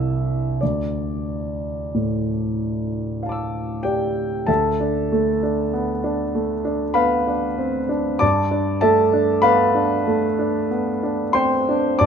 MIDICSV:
0, 0, Header, 1, 2, 480
1, 0, Start_track
1, 0, Tempo, 1307190
1, 224, Time_signature, 3, 2, 24, 8
1, 708, Tempo, 1276596
1, 1668, Tempo, 1242236
1, 3588, Tempo, 1273885
1, 4571, End_track
2, 0, Start_track
2, 0, Title_t, "Grand piano"
2, 0, Program_c, 0, 0
2, 0, Control_c, 0, 64, 127
2, 0, Note_on_c, 0, 36, 42
2, 0, Note_on_c, 0, 62, 28
2, 0, Note_on_c, 0, 64, 27
2, 0, Note_on_c, 0, 76, 61
2, 211, Note_off_c, 0, 64, 0
2, 212, Note_off_c, 0, 36, 0
2, 212, Note_off_c, 0, 62, 0
2, 223, Note_off_c, 0, 76, 0
2, 223, Note_on_c, 0, 74, 51
2, 230, Note_on_c, 0, 38, 39
2, 231, Control_c, 0, 64, 0
2, 292, Control_c, 0, 64, 127
2, 714, Note_on_c, 0, 45, 33
2, 1197, Note_on_c, 0, 77, 25
2, 1209, Note_on_c, 0, 81, 24
2, 1221, Note_on_c, 0, 86, 21
2, 1230, Note_on_c, 0, 88, 25
2, 1423, Note_off_c, 0, 74, 0
2, 1423, Note_on_c, 0, 79, 52
2, 1429, Note_on_c, 0, 67, 37
2, 1429, Note_on_c, 0, 74, 39
2, 1653, Note_off_c, 0, 67, 0
2, 1653, Note_off_c, 0, 74, 0
2, 1655, Note_off_c, 0, 77, 0
2, 1656, Note_off_c, 0, 38, 0
2, 1656, Note_off_c, 0, 81, 0
2, 1662, Note_on_c, 0, 81, 49
2, 1665, Note_off_c, 0, 79, 0
2, 1667, Note_off_c, 0, 86, 0
2, 1667, Note_on_c, 0, 38, 35
2, 1668, Note_on_c, 0, 69, 39
2, 1668, Note_on_c, 0, 76, 37
2, 1671, Note_off_c, 0, 45, 0
2, 1672, Note_off_c, 0, 88, 0
2, 1674, Control_c, 0, 64, 0
2, 1751, Control_c, 0, 64, 127
2, 1792, Note_on_c, 0, 62, 33
2, 1915, Note_on_c, 0, 57, 34
2, 1984, Note_off_c, 0, 62, 0
2, 2035, Note_on_c, 0, 62, 32
2, 2103, Note_off_c, 0, 57, 0
2, 2152, Note_on_c, 0, 59, 37
2, 2220, Note_off_c, 0, 62, 0
2, 2270, Note_on_c, 0, 62, 34
2, 2338, Note_off_c, 0, 59, 0
2, 2389, Note_on_c, 0, 57, 28
2, 2458, Note_off_c, 0, 62, 0
2, 2505, Note_on_c, 0, 62, 36
2, 2579, Note_off_c, 0, 57, 0
2, 2609, Note_off_c, 0, 76, 0
2, 2610, Note_off_c, 0, 69, 0
2, 2618, Note_on_c, 0, 83, 56
2, 2622, Note_off_c, 0, 81, 0
2, 2622, Note_on_c, 0, 71, 49
2, 2622, Note_on_c, 0, 77, 46
2, 2624, Note_on_c, 0, 59, 31
2, 2699, Note_off_c, 0, 62, 0
2, 2747, Note_on_c, 0, 62, 33
2, 2820, Note_off_c, 0, 59, 0
2, 2867, Note_on_c, 0, 60, 30
2, 2941, Note_off_c, 0, 62, 0
2, 2985, Note_on_c, 0, 62, 36
2, 2988, Note_off_c, 0, 60, 0
2, 3091, Note_off_c, 0, 77, 0
2, 3092, Note_off_c, 0, 71, 0
2, 3093, Note_off_c, 0, 38, 0
2, 3102, Note_on_c, 0, 86, 65
2, 3105, Note_off_c, 0, 83, 0
2, 3106, Note_off_c, 0, 62, 0
2, 3106, Note_on_c, 0, 74, 45
2, 3107, Note_on_c, 0, 81, 49
2, 3111, Note_on_c, 0, 43, 41
2, 3116, Control_c, 0, 64, 0
2, 3183, Control_c, 0, 64, 127
2, 3226, Note_on_c, 0, 62, 34
2, 3330, Note_off_c, 0, 74, 0
2, 3330, Note_off_c, 0, 81, 0
2, 3341, Note_on_c, 0, 81, 66
2, 3343, Note_off_c, 0, 86, 0
2, 3343, Note_on_c, 0, 76, 45
2, 3346, Note_on_c, 0, 69, 46
2, 3348, Note_on_c, 0, 57, 34
2, 3418, Note_off_c, 0, 62, 0
2, 3465, Note_on_c, 0, 62, 37
2, 3539, Note_off_c, 0, 57, 0
2, 3569, Note_off_c, 0, 76, 0
2, 3571, Note_off_c, 0, 69, 0
2, 3575, Note_on_c, 0, 83, 70
2, 3580, Note_on_c, 0, 77, 52
2, 3581, Note_on_c, 0, 71, 56
2, 3582, Note_on_c, 0, 59, 39
2, 3584, Note_off_c, 0, 81, 0
2, 3657, Note_off_c, 0, 62, 0
2, 3700, Note_on_c, 0, 62, 37
2, 3774, Note_off_c, 0, 59, 0
2, 3822, Note_on_c, 0, 57, 37
2, 3894, Note_off_c, 0, 62, 0
2, 3942, Note_on_c, 0, 62, 38
2, 4016, Note_off_c, 0, 57, 0
2, 4047, Note_off_c, 0, 71, 0
2, 4047, Note_off_c, 0, 77, 0
2, 4060, Note_off_c, 0, 83, 0
2, 4063, Note_on_c, 0, 59, 31
2, 4137, Note_off_c, 0, 62, 0
2, 4184, Note_on_c, 0, 62, 39
2, 4258, Note_off_c, 0, 59, 0
2, 4297, Note_on_c, 0, 84, 62
2, 4303, Note_on_c, 0, 72, 50
2, 4303, Note_on_c, 0, 79, 44
2, 4305, Note_on_c, 0, 60, 33
2, 4379, Note_off_c, 0, 62, 0
2, 4426, Note_off_c, 0, 60, 0
2, 4431, Note_on_c, 0, 62, 41
2, 4529, Note_off_c, 0, 72, 0
2, 4529, Note_off_c, 0, 79, 0
2, 4533, Note_off_c, 0, 43, 0
2, 4541, Note_off_c, 0, 84, 0
2, 4544, Note_on_c, 0, 86, 61
2, 4546, Note_on_c, 0, 74, 46
2, 4547, Note_on_c, 0, 81, 40
2, 4548, Note_off_c, 0, 62, 0
2, 4551, Note_on_c, 0, 43, 45
2, 4554, Control_c, 0, 64, 0
2, 4571, Note_off_c, 0, 43, 0
2, 4571, Note_off_c, 0, 74, 0
2, 4571, Note_off_c, 0, 81, 0
2, 4571, Note_off_c, 0, 86, 0
2, 4571, End_track
0, 0, End_of_file